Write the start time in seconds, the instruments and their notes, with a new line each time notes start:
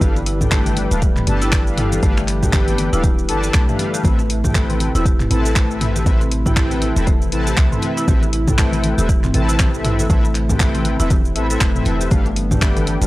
Already playing: analog synth pad D3 G3 B4
0.01 808-style bass G1, analog polysynth D4 G4 A4 B4 F5, marimba G4, analog synth pad G4, kick, closed hi-hat, high conga, low conga, shaker
0.16 muted conga, shaker
0.26 marimba E4, open hi-hat
0.41 analog polysynth D4 G4 A4 B4 G5, marimba A4, kick, mid tom, high conga, low conga, shaker
0.52 marimba A3, finger snap, kick, clap, closed hi-hat, muted conga, shaker
0.66 marimba E3, closed hi-hat, high conga, shaker
0.77 open hi-hat, high conga
0.91 808-style bass D1, analog polysynth D4 G4 A4 B4 F5, marimba G4, closed hi-hat, muted conga, shaker
1.02 marimba E3, kick, closed hi-hat, shaker
1.17 marimba B3, clap, mid tom, shaker
1.27 808-style bass G1, analog polysynth D4 G4 A4 B4 A5, open hi-hat, low conga
1.41 marimba E4, closed hi-hat, muted conga, shaker
1.52 finger snap, kick, clap, closed hi-hat, high conga, shaker
1.67 analog polysynth D4 G4 A4 B4 F5, shaker
1.78 marimba E4, mid tom, open hi-hat, muted conga
1.92 marimba A4, closed hi-hat, high conga, shaker
2.03 808-style bass G1, marimba A3, analog polysynth D4 G4 A4 B4 F5, kick, closed hi-hat, high conga, low conga, shaker
2.17 marimba E3, finger snap, muted conga, shaker
2.28 clap, open hi-hat
2.43 analog polysynth D4 G4 A4 B4 G5, marimba G4, kick, mid tom, high conga, low conga, shaker
2.53 marimba E3, finger snap, kick, clap, closed hi-hat, shaker
2.68 marimba B3, closed hi-hat, high conga, shaker
2.78 open hi-hat, high conga
2.93 808-style bass D1, analog polysynth D4 G4 A4 B4 F5, marimba E4, closed hi-hat, muted conga, shaker
3.04 marimba G4, kick, closed hi-hat, high conga, shaker
3.19 shaker
3.29 808-style bass G1, analog polysynth D4 G4 A4 B4 A5, marimba E4, open hi-hat
3.43 marimba A4, closed hi-hat, muted conga, shaker
3.54 808-style bass B1, marimba A3, finger snap, kick, clap, closed hi-hat, shaker
3.69 marimba E3, analog polysynth D4 G4 A4 B4 F5, mid tom, shaker
3.79 open hi-hat, muted conga
3.94 marimba G4, closed hi-hat, shaker
4.04 808-style bass A1, analog synth pad C3 A3 E4, marimba A3, analog polysynth C4 E4 A4 B4 E5, kick, closed hi-hat, high conga, low conga, shaker
4.19 marimba E3, muted conga, shaker
4.30 open hi-hat
4.44 analog polysynth C4 E4 A4 B4 G5, marimba G4, kick, mid tom, high conga, low conga, shaker
4.54 marimba E3, finger snap, kick, clap, closed hi-hat, muted conga, shaker
4.70 marimba C4, closed hi-hat, high conga, shaker
4.80 open hi-hat, high conga
4.95 808-style bass E1, analog polysynth C4 E4 A4 B4 E5, marimba E4, closed hi-hat, muted conga, shaker
5.05 marimba G4, kick, closed hi-hat, shaker
5.20 clap, mid tom, shaker
5.31 808-style bass A1, analog polysynth C4 E4 A4 B4 A5, marimba E4, open hi-hat, low conga
5.45 marimba A4, closed hi-hat, muted conga, shaker
5.56 marimba A3, finger snap, kick, clap, closed hi-hat, high conga, shaker
5.70 marimba E3, analog polysynth C4 E4 A4 B4 E5, shaker
5.81 mid tom, open hi-hat, muted conga
5.96 marimba G4, closed hi-hat, high conga, shaker
6.06 808-style bass A1, marimba E3, analog polysynth C4 E4 A4 B4 E5, kick, closed hi-hat, high conga, low conga, shaker
6.21 marimba C4, muted conga, shaker
6.32 open hi-hat
6.46 analog polysynth C4 E4 A4 B4 G5, marimba E4, kick, mid tom, high conga, low conga, shaker
6.57 marimba G4, finger snap, kick, clap, closed hi-hat, muted conga, shaker
6.71 closed hi-hat, high conga, shaker
6.82 marimba E4, open hi-hat, high conga
6.96 808-style bass E1, analog polysynth C4 E4 A4 B4 E5, marimba A4, closed hi-hat, muted conga, shaker
7.07 marimba A3, kick, closed hi-hat, high conga, shaker
7.22 marimba E3, shaker
7.32 808-style bass A1, analog polysynth C4 E4 A4 B4 A5, open hi-hat
7.47 marimba G4, closed hi-hat, muted conga, shaker
7.57 808-style bass C2, marimba E3, finger snap, kick, clap, closed hi-hat, shaker
7.72 analog polysynth C4 E4 A4 B4 E5, marimba C4, mid tom, shaker
7.82 open hi-hat, muted conga
7.97 marimba E4, closed hi-hat, shaker
8.08 808-style bass A1, analog synth pad C4, analog polysynth C4 E4 A4 B4 E5, marimba G4, kick, closed hi-hat, high conga, low conga, shaker
8.23 muted conga, shaker
8.33 marimba E4, open hi-hat
8.47 analog polysynth C4 E4 A4 B4 G5, marimba A4, kick, mid tom, high conga, low conga, shaker
8.58 marimba A3, finger snap, kick, clap, closed hi-hat, muted conga, shaker
8.72 marimba E3, closed hi-hat, high conga, shaker
8.84 open hi-hat, high conga
8.98 808-style bass E1, analog polysynth C4 E4 A4 B4 E5, marimba G4, closed hi-hat, muted conga, shaker
9.09 marimba E3, kick, closed hi-hat, shaker
9.23 marimba C4, clap, mid tom, shaker
9.34 808-style bass A1, analog polysynth C4 E4 A4 B4 A5, open hi-hat, low conga
9.48 marimba E4, closed hi-hat, muted conga, shaker
9.59 marimba G4, finger snap, kick, clap, closed hi-hat, high conga, shaker
9.74 analog polysynth C4 E4 A4 B4 E5, shaker
9.84 marimba E4, mid tom, open hi-hat, muted conga
9.99 marimba A4, closed hi-hat, high conga, shaker
10.10 808-style bass A1, marimba A3, analog polysynth C4 E4 A4 B4 E5, kick, closed hi-hat, high conga, low conga, shaker
10.24 marimba E3, muted conga, shaker
10.35 clap, open hi-hat
10.49 analog polysynth C4 E4 A4 B4 G5, marimba G4, kick, mid tom, high conga, low conga, shaker
10.60 marimba E3, finger snap, kick, clap, closed hi-hat, muted conga, shaker
10.75 marimba C4, closed hi-hat, high conga, shaker
10.85 open hi-hat, high conga
11.00 808-style bass E1, analog polysynth C4 E4 A4 B4 E5, marimba E4, closed hi-hat, muted conga, shaker
11.10 marimba G4, kick, closed hi-hat, high conga, shaker
11.25 shaker
11.36 808-style bass A1, analog polysynth C4 E4 A4 B4 E5, marimba E4, open hi-hat
11.50 analog polysynth C4 E4 A4 B4 E5, marimba A4, closed hi-hat, muted conga, shaker
11.61 808-style bass E1, marimba A3, finger snap, kick, clap, closed hi-hat, shaker
11.76 marimba E3, analog polysynth C4 E4 A4 B4 E5, mid tom, shaker
11.85 808-style bass E1, open hi-hat, muted conga
12.01 marimba G4, closed hi-hat, shaker
12.11 808-style bass G1, analog synth pad D3 G3 B3, marimba A3, analog polysynth D4 G4 A4 B4 F5, kick, closed hi-hat, high conga, low conga, shaker
12.26 marimba E3, muted conga, shaker
12.36 open hi-hat
12.51 analog polysynth D4 G4 A4 B4 G5, marimba G4, kick, mid tom, high conga, low conga, shaker
12.62 marimba E3, finger snap, kick, clap, closed hi-hat, muted conga, shaker
12.76 marimba B3, closed hi-hat, high conga, shaker
12.87 open hi-hat, high conga
13.02 808-style bass D1, marimba A3, analog polysynth D4 G4 A4 B4 F5, closed hi-hat, muted conga, shaker